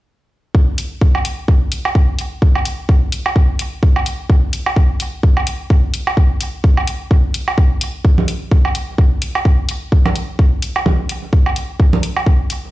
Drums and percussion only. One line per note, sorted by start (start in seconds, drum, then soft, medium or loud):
0.55 kick loud
0.78 closed hi-hat medium
1.01 kick loud
1.15 low woodblock medium
1.25 closed hi-hat medium
1.48 kick loud
1.72 closed hi-hat medium
1.85 low woodblock medium
1.95 kick loud
2.19 closed hi-hat medium
2.42 kick loud
2.55 low woodblock medium
2.65 closed hi-hat medium
2.89 kick loud
3.12 closed hi-hat medium
3.26 low woodblock medium
3.36 kick loud
3.59 closed hi-hat medium
3.83 kick loud
3.96 low woodblock medium
4.06 closed hi-hat medium
4.30 kick loud
4.53 closed hi-hat loud
4.66 low woodblock medium
4.76 kick loud
5.00 closed hi-hat medium
5.23 kick loud
5.37 low woodblock medium
5.47 closed hi-hat loud
5.70 kick loud
5.94 closed hi-hat medium
6.07 low woodblock medium
6.17 kick loud
6.41 closed hi-hat medium
6.64 kick loud
6.77 low woodblock medium
6.87 closed hi-hat medium
7.11 kick loud
7.34 closed hi-hat loud
7.48 low woodblock medium
7.58 kick loud
7.81 closed hi-hat medium
8.05 kick loud
8.18 low conga medium
8.28 closed hi-hat medium
8.51 kick loud
8.65 low woodblock medium
8.75 closed hi-hat medium
8.98 kick loud
9.22 closed hi-hat medium
9.35 low woodblock medium
9.45 kick loud
9.69 closed hi-hat medium
9.92 kick loud
10.06 low conga medium
10.06 low woodblock medium
10.16 closed hi-hat medium
10.39 kick loud
10.62 closed hi-hat medium
10.76 low woodblock medium
10.86 kick loud
10.86 low conga medium
11.09 closed hi-hat medium
11.33 kick loud
11.46 low woodblock medium
11.56 closed hi-hat medium
11.80 kick loud
11.93 low conga medium
12.03 closed hi-hat medium
12.17 low woodblock medium
12.27 kick loud
12.50 closed hi-hat medium